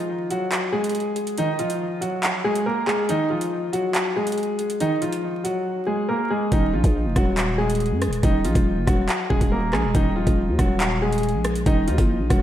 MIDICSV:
0, 0, Header, 1, 4, 480
1, 0, Start_track
1, 0, Key_signature, -6, "minor"
1, 0, Tempo, 428571
1, 1540, Time_signature, 4, 2, 24, 8
1, 13914, End_track
2, 0, Start_track
2, 0, Title_t, "Grand piano"
2, 0, Program_c, 0, 0
2, 0, Note_on_c, 0, 53, 66
2, 0, Note_on_c, 0, 65, 78
2, 312, Note_off_c, 0, 65, 0
2, 317, Note_off_c, 0, 53, 0
2, 344, Note_on_c, 0, 66, 83
2, 353, Note_on_c, 0, 54, 63
2, 793, Note_off_c, 0, 66, 0
2, 798, Note_off_c, 0, 54, 0
2, 811, Note_on_c, 0, 68, 85
2, 820, Note_on_c, 0, 56, 64
2, 1492, Note_off_c, 0, 68, 0
2, 1497, Note_off_c, 0, 56, 0
2, 1549, Note_on_c, 0, 63, 105
2, 1557, Note_on_c, 0, 51, 81
2, 1766, Note_off_c, 0, 63, 0
2, 1771, Note_off_c, 0, 51, 0
2, 1784, Note_on_c, 0, 65, 83
2, 1792, Note_on_c, 0, 53, 67
2, 2233, Note_off_c, 0, 65, 0
2, 2238, Note_off_c, 0, 53, 0
2, 2254, Note_on_c, 0, 66, 76
2, 2262, Note_on_c, 0, 54, 58
2, 2708, Note_off_c, 0, 66, 0
2, 2712, Note_off_c, 0, 54, 0
2, 2738, Note_on_c, 0, 68, 94
2, 2746, Note_on_c, 0, 56, 70
2, 2960, Note_off_c, 0, 68, 0
2, 2965, Note_off_c, 0, 56, 0
2, 2980, Note_on_c, 0, 70, 88
2, 2989, Note_on_c, 0, 58, 68
2, 3202, Note_off_c, 0, 70, 0
2, 3206, Note_off_c, 0, 58, 0
2, 3214, Note_on_c, 0, 68, 90
2, 3223, Note_on_c, 0, 56, 64
2, 3439, Note_off_c, 0, 68, 0
2, 3443, Note_off_c, 0, 56, 0
2, 3466, Note_on_c, 0, 63, 105
2, 3476, Note_on_c, 0, 51, 79
2, 3685, Note_off_c, 0, 63, 0
2, 3690, Note_off_c, 0, 51, 0
2, 3699, Note_on_c, 0, 65, 78
2, 3708, Note_on_c, 0, 53, 67
2, 4151, Note_off_c, 0, 65, 0
2, 4156, Note_off_c, 0, 53, 0
2, 4175, Note_on_c, 0, 66, 77
2, 4185, Note_on_c, 0, 54, 63
2, 4629, Note_off_c, 0, 66, 0
2, 4634, Note_off_c, 0, 54, 0
2, 4664, Note_on_c, 0, 68, 82
2, 4673, Note_on_c, 0, 56, 62
2, 5339, Note_off_c, 0, 68, 0
2, 5344, Note_off_c, 0, 56, 0
2, 5382, Note_on_c, 0, 63, 102
2, 5391, Note_on_c, 0, 51, 81
2, 5603, Note_off_c, 0, 63, 0
2, 5608, Note_off_c, 0, 51, 0
2, 5619, Note_on_c, 0, 65, 84
2, 5628, Note_on_c, 0, 53, 65
2, 6071, Note_off_c, 0, 65, 0
2, 6076, Note_off_c, 0, 53, 0
2, 6094, Note_on_c, 0, 66, 75
2, 6103, Note_on_c, 0, 54, 59
2, 6548, Note_off_c, 0, 66, 0
2, 6553, Note_off_c, 0, 54, 0
2, 6569, Note_on_c, 0, 68, 81
2, 6579, Note_on_c, 0, 56, 63
2, 6796, Note_off_c, 0, 68, 0
2, 6801, Note_off_c, 0, 56, 0
2, 6817, Note_on_c, 0, 70, 88
2, 6825, Note_on_c, 0, 58, 67
2, 7040, Note_off_c, 0, 70, 0
2, 7045, Note_off_c, 0, 58, 0
2, 7060, Note_on_c, 0, 68, 78
2, 7070, Note_on_c, 0, 56, 71
2, 7282, Note_off_c, 0, 68, 0
2, 7287, Note_off_c, 0, 56, 0
2, 7303, Note_on_c, 0, 63, 104
2, 7312, Note_on_c, 0, 51, 75
2, 7523, Note_off_c, 0, 63, 0
2, 7528, Note_off_c, 0, 51, 0
2, 7542, Note_on_c, 0, 65, 78
2, 7551, Note_on_c, 0, 53, 65
2, 7992, Note_off_c, 0, 65, 0
2, 7997, Note_off_c, 0, 53, 0
2, 8023, Note_on_c, 0, 66, 81
2, 8032, Note_on_c, 0, 54, 65
2, 8473, Note_off_c, 0, 66, 0
2, 8478, Note_off_c, 0, 54, 0
2, 8490, Note_on_c, 0, 68, 87
2, 8498, Note_on_c, 0, 56, 65
2, 9172, Note_off_c, 0, 68, 0
2, 9176, Note_off_c, 0, 56, 0
2, 9227, Note_on_c, 0, 63, 104
2, 9235, Note_on_c, 0, 51, 79
2, 9445, Note_off_c, 0, 63, 0
2, 9450, Note_off_c, 0, 51, 0
2, 9463, Note_on_c, 0, 65, 80
2, 9472, Note_on_c, 0, 53, 64
2, 9913, Note_off_c, 0, 65, 0
2, 9918, Note_off_c, 0, 53, 0
2, 9932, Note_on_c, 0, 66, 76
2, 9941, Note_on_c, 0, 54, 56
2, 10387, Note_off_c, 0, 66, 0
2, 10392, Note_off_c, 0, 54, 0
2, 10415, Note_on_c, 0, 68, 96
2, 10424, Note_on_c, 0, 56, 71
2, 10639, Note_off_c, 0, 68, 0
2, 10644, Note_off_c, 0, 56, 0
2, 10659, Note_on_c, 0, 70, 88
2, 10668, Note_on_c, 0, 58, 70
2, 10881, Note_off_c, 0, 70, 0
2, 10886, Note_off_c, 0, 58, 0
2, 10894, Note_on_c, 0, 68, 87
2, 10903, Note_on_c, 0, 56, 63
2, 11118, Note_off_c, 0, 68, 0
2, 11123, Note_off_c, 0, 56, 0
2, 11145, Note_on_c, 0, 63, 104
2, 11154, Note_on_c, 0, 51, 82
2, 11364, Note_off_c, 0, 63, 0
2, 11369, Note_off_c, 0, 51, 0
2, 11377, Note_on_c, 0, 65, 77
2, 11386, Note_on_c, 0, 53, 64
2, 11830, Note_off_c, 0, 65, 0
2, 11834, Note_off_c, 0, 53, 0
2, 11854, Note_on_c, 0, 66, 78
2, 11862, Note_on_c, 0, 54, 65
2, 12308, Note_off_c, 0, 66, 0
2, 12313, Note_off_c, 0, 54, 0
2, 12343, Note_on_c, 0, 68, 83
2, 12352, Note_on_c, 0, 56, 66
2, 13018, Note_off_c, 0, 68, 0
2, 13023, Note_off_c, 0, 56, 0
2, 13062, Note_on_c, 0, 63, 104
2, 13071, Note_on_c, 0, 51, 82
2, 13283, Note_off_c, 0, 63, 0
2, 13288, Note_off_c, 0, 51, 0
2, 13300, Note_on_c, 0, 65, 83
2, 13309, Note_on_c, 0, 53, 67
2, 13751, Note_off_c, 0, 65, 0
2, 13756, Note_off_c, 0, 53, 0
2, 13773, Note_on_c, 0, 66, 74
2, 13782, Note_on_c, 0, 54, 59
2, 13914, Note_off_c, 0, 54, 0
2, 13914, Note_off_c, 0, 66, 0
2, 13914, End_track
3, 0, Start_track
3, 0, Title_t, "808-style bass"
3, 0, Program_c, 1, 38
3, 7301, Note_on_c, 1, 27, 110
3, 7541, Note_on_c, 1, 34, 104
3, 7557, Note_off_c, 1, 27, 0
3, 7654, Note_off_c, 1, 34, 0
3, 7659, Note_on_c, 1, 34, 106
3, 7901, Note_on_c, 1, 29, 101
3, 7918, Note_off_c, 1, 34, 0
3, 8015, Note_off_c, 1, 29, 0
3, 8020, Note_on_c, 1, 27, 105
3, 8861, Note_on_c, 1, 42, 98
3, 8878, Note_off_c, 1, 27, 0
3, 9041, Note_on_c, 1, 27, 101
3, 9058, Note_off_c, 1, 42, 0
3, 9211, Note_off_c, 1, 27, 0
3, 9220, Note_on_c, 1, 27, 107
3, 9461, Note_on_c, 1, 34, 102
3, 9477, Note_off_c, 1, 27, 0
3, 9572, Note_off_c, 1, 34, 0
3, 9579, Note_on_c, 1, 27, 106
3, 9821, Note_on_c, 1, 30, 96
3, 9837, Note_off_c, 1, 27, 0
3, 9934, Note_off_c, 1, 30, 0
3, 9940, Note_on_c, 1, 27, 107
3, 10170, Note_off_c, 1, 27, 0
3, 10420, Note_on_c, 1, 27, 102
3, 10533, Note_off_c, 1, 27, 0
3, 10539, Note_on_c, 1, 27, 106
3, 10900, Note_on_c, 1, 34, 100
3, 10917, Note_off_c, 1, 27, 0
3, 11020, Note_on_c, 1, 27, 100
3, 11037, Note_off_c, 1, 34, 0
3, 11134, Note_off_c, 1, 27, 0
3, 11140, Note_on_c, 1, 27, 118
3, 11486, Note_off_c, 1, 27, 0
3, 11499, Note_on_c, 1, 27, 106
3, 11740, Note_on_c, 1, 39, 97
3, 11757, Note_off_c, 1, 27, 0
3, 11854, Note_off_c, 1, 39, 0
3, 11860, Note_on_c, 1, 27, 106
3, 12700, Note_on_c, 1, 34, 99
3, 12717, Note_off_c, 1, 27, 0
3, 13042, Note_off_c, 1, 34, 0
3, 13061, Note_on_c, 1, 27, 110
3, 13301, Note_on_c, 1, 39, 99
3, 13317, Note_off_c, 1, 27, 0
3, 13414, Note_off_c, 1, 39, 0
3, 13420, Note_on_c, 1, 30, 107
3, 13660, Note_on_c, 1, 34, 95
3, 13677, Note_off_c, 1, 30, 0
3, 13774, Note_off_c, 1, 34, 0
3, 13780, Note_on_c, 1, 27, 105
3, 13914, Note_off_c, 1, 27, 0
3, 13914, End_track
4, 0, Start_track
4, 0, Title_t, "Drums"
4, 342, Note_on_c, 9, 42, 81
4, 454, Note_off_c, 9, 42, 0
4, 580, Note_on_c, 9, 42, 83
4, 581, Note_on_c, 9, 39, 122
4, 692, Note_off_c, 9, 42, 0
4, 693, Note_off_c, 9, 39, 0
4, 941, Note_on_c, 9, 42, 67
4, 1001, Note_off_c, 9, 42, 0
4, 1001, Note_on_c, 9, 42, 58
4, 1061, Note_off_c, 9, 42, 0
4, 1061, Note_on_c, 9, 42, 52
4, 1121, Note_off_c, 9, 42, 0
4, 1121, Note_on_c, 9, 42, 42
4, 1233, Note_off_c, 9, 42, 0
4, 1299, Note_on_c, 9, 42, 79
4, 1411, Note_off_c, 9, 42, 0
4, 1422, Note_on_c, 9, 42, 72
4, 1534, Note_off_c, 9, 42, 0
4, 1540, Note_on_c, 9, 42, 89
4, 1652, Note_off_c, 9, 42, 0
4, 1781, Note_on_c, 9, 42, 83
4, 1893, Note_off_c, 9, 42, 0
4, 1902, Note_on_c, 9, 42, 71
4, 2014, Note_off_c, 9, 42, 0
4, 2261, Note_on_c, 9, 42, 82
4, 2373, Note_off_c, 9, 42, 0
4, 2499, Note_on_c, 9, 42, 85
4, 2500, Note_on_c, 9, 39, 119
4, 2611, Note_off_c, 9, 42, 0
4, 2612, Note_off_c, 9, 39, 0
4, 2861, Note_on_c, 9, 42, 73
4, 2973, Note_off_c, 9, 42, 0
4, 3220, Note_on_c, 9, 39, 69
4, 3332, Note_off_c, 9, 39, 0
4, 3460, Note_on_c, 9, 42, 88
4, 3572, Note_off_c, 9, 42, 0
4, 3821, Note_on_c, 9, 42, 73
4, 3933, Note_off_c, 9, 42, 0
4, 4181, Note_on_c, 9, 42, 83
4, 4293, Note_off_c, 9, 42, 0
4, 4419, Note_on_c, 9, 42, 86
4, 4420, Note_on_c, 9, 39, 120
4, 4531, Note_off_c, 9, 42, 0
4, 4532, Note_off_c, 9, 39, 0
4, 4780, Note_on_c, 9, 42, 71
4, 4840, Note_off_c, 9, 42, 0
4, 4840, Note_on_c, 9, 42, 59
4, 4901, Note_off_c, 9, 42, 0
4, 4901, Note_on_c, 9, 42, 51
4, 4960, Note_off_c, 9, 42, 0
4, 4960, Note_on_c, 9, 42, 41
4, 5072, Note_off_c, 9, 42, 0
4, 5138, Note_on_c, 9, 42, 76
4, 5250, Note_off_c, 9, 42, 0
4, 5261, Note_on_c, 9, 42, 69
4, 5373, Note_off_c, 9, 42, 0
4, 5380, Note_on_c, 9, 42, 84
4, 5492, Note_off_c, 9, 42, 0
4, 5620, Note_on_c, 9, 42, 69
4, 5732, Note_off_c, 9, 42, 0
4, 5740, Note_on_c, 9, 42, 73
4, 5852, Note_off_c, 9, 42, 0
4, 6101, Note_on_c, 9, 42, 84
4, 6213, Note_off_c, 9, 42, 0
4, 7300, Note_on_c, 9, 36, 124
4, 7300, Note_on_c, 9, 42, 85
4, 7412, Note_off_c, 9, 36, 0
4, 7412, Note_off_c, 9, 42, 0
4, 7659, Note_on_c, 9, 36, 91
4, 7662, Note_on_c, 9, 42, 75
4, 7771, Note_off_c, 9, 36, 0
4, 7774, Note_off_c, 9, 42, 0
4, 8019, Note_on_c, 9, 37, 90
4, 8020, Note_on_c, 9, 36, 104
4, 8021, Note_on_c, 9, 42, 82
4, 8131, Note_off_c, 9, 37, 0
4, 8132, Note_off_c, 9, 36, 0
4, 8133, Note_off_c, 9, 42, 0
4, 8258, Note_on_c, 9, 42, 87
4, 8259, Note_on_c, 9, 39, 124
4, 8370, Note_off_c, 9, 42, 0
4, 8371, Note_off_c, 9, 39, 0
4, 8620, Note_on_c, 9, 42, 69
4, 8680, Note_off_c, 9, 42, 0
4, 8680, Note_on_c, 9, 42, 59
4, 8740, Note_off_c, 9, 42, 0
4, 8740, Note_on_c, 9, 42, 51
4, 8800, Note_off_c, 9, 42, 0
4, 8800, Note_on_c, 9, 42, 41
4, 8912, Note_off_c, 9, 42, 0
4, 8978, Note_on_c, 9, 42, 78
4, 8979, Note_on_c, 9, 37, 94
4, 9090, Note_off_c, 9, 42, 0
4, 9091, Note_off_c, 9, 37, 0
4, 9101, Note_on_c, 9, 42, 71
4, 9213, Note_off_c, 9, 42, 0
4, 9219, Note_on_c, 9, 42, 85
4, 9220, Note_on_c, 9, 36, 125
4, 9331, Note_off_c, 9, 42, 0
4, 9332, Note_off_c, 9, 36, 0
4, 9459, Note_on_c, 9, 42, 82
4, 9571, Note_off_c, 9, 42, 0
4, 9579, Note_on_c, 9, 36, 91
4, 9581, Note_on_c, 9, 42, 72
4, 9691, Note_off_c, 9, 36, 0
4, 9693, Note_off_c, 9, 42, 0
4, 9939, Note_on_c, 9, 37, 91
4, 9940, Note_on_c, 9, 36, 104
4, 9941, Note_on_c, 9, 42, 81
4, 10051, Note_off_c, 9, 37, 0
4, 10052, Note_off_c, 9, 36, 0
4, 10053, Note_off_c, 9, 42, 0
4, 10178, Note_on_c, 9, 42, 85
4, 10179, Note_on_c, 9, 39, 119
4, 10290, Note_off_c, 9, 42, 0
4, 10291, Note_off_c, 9, 39, 0
4, 10420, Note_on_c, 9, 36, 89
4, 10532, Note_off_c, 9, 36, 0
4, 10540, Note_on_c, 9, 36, 94
4, 10540, Note_on_c, 9, 42, 75
4, 10652, Note_off_c, 9, 36, 0
4, 10652, Note_off_c, 9, 42, 0
4, 10899, Note_on_c, 9, 37, 99
4, 10899, Note_on_c, 9, 39, 66
4, 11011, Note_off_c, 9, 37, 0
4, 11011, Note_off_c, 9, 39, 0
4, 11140, Note_on_c, 9, 36, 127
4, 11140, Note_on_c, 9, 42, 85
4, 11252, Note_off_c, 9, 36, 0
4, 11252, Note_off_c, 9, 42, 0
4, 11499, Note_on_c, 9, 36, 93
4, 11502, Note_on_c, 9, 42, 75
4, 11611, Note_off_c, 9, 36, 0
4, 11614, Note_off_c, 9, 42, 0
4, 11859, Note_on_c, 9, 37, 91
4, 11860, Note_on_c, 9, 36, 105
4, 11861, Note_on_c, 9, 42, 83
4, 11971, Note_off_c, 9, 37, 0
4, 11972, Note_off_c, 9, 36, 0
4, 11973, Note_off_c, 9, 42, 0
4, 12099, Note_on_c, 9, 42, 84
4, 12100, Note_on_c, 9, 39, 124
4, 12211, Note_off_c, 9, 42, 0
4, 12212, Note_off_c, 9, 39, 0
4, 12461, Note_on_c, 9, 42, 70
4, 12521, Note_off_c, 9, 42, 0
4, 12521, Note_on_c, 9, 42, 61
4, 12581, Note_off_c, 9, 42, 0
4, 12581, Note_on_c, 9, 42, 51
4, 12640, Note_off_c, 9, 42, 0
4, 12640, Note_on_c, 9, 42, 42
4, 12752, Note_off_c, 9, 42, 0
4, 12818, Note_on_c, 9, 42, 80
4, 12820, Note_on_c, 9, 37, 99
4, 12930, Note_off_c, 9, 42, 0
4, 12932, Note_off_c, 9, 37, 0
4, 12941, Note_on_c, 9, 42, 70
4, 13053, Note_off_c, 9, 42, 0
4, 13061, Note_on_c, 9, 36, 121
4, 13061, Note_on_c, 9, 42, 86
4, 13173, Note_off_c, 9, 36, 0
4, 13173, Note_off_c, 9, 42, 0
4, 13301, Note_on_c, 9, 42, 69
4, 13413, Note_off_c, 9, 42, 0
4, 13420, Note_on_c, 9, 36, 92
4, 13421, Note_on_c, 9, 42, 74
4, 13532, Note_off_c, 9, 36, 0
4, 13533, Note_off_c, 9, 42, 0
4, 13779, Note_on_c, 9, 37, 90
4, 13780, Note_on_c, 9, 36, 104
4, 13782, Note_on_c, 9, 42, 82
4, 13891, Note_off_c, 9, 37, 0
4, 13892, Note_off_c, 9, 36, 0
4, 13894, Note_off_c, 9, 42, 0
4, 13914, End_track
0, 0, End_of_file